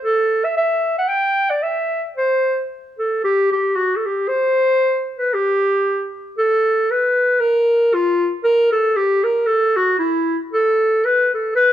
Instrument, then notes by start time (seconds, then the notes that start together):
clarinet
0.04 A4
0.44 E5
0.57 E5
0.98 F#5
1.08 G5
1.50 D5
1.62 E5
2.16 C5
2.98 A4
3.24 G4
3.52 G4
3.76 F#4
3.96 A4
4.06 G4
4.28 C5
5.18 B4
5.34 G4
6.38 A4
6.91 B4
7.40 A#4
7.94 F4
8.44 A#4
8.72 A4
8.96 G4
9.24 A#4
9.46 A4
9.76 F#4
9.99 E4
10.53 A4
11.05 B4
11.34 A4
11.55 B4